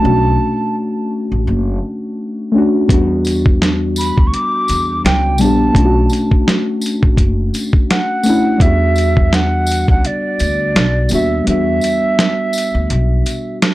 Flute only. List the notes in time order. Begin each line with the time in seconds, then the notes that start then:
Already playing: A5
3.98 B5
4.27 C#6
4.34 D6
5.05 G5
5.41 A5
7.90 F#5
8.62 E5
9.35 F#5
9.90 F#5
10.06 D5
11.14 E5
11.49 E5